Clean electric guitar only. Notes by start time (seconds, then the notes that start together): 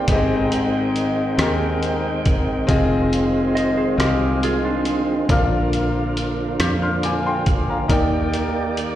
3.55 C5 D#5
3.77 G#4 C5
3.99 G4 A#4
4.44 F4 G#4
4.65 D4 F4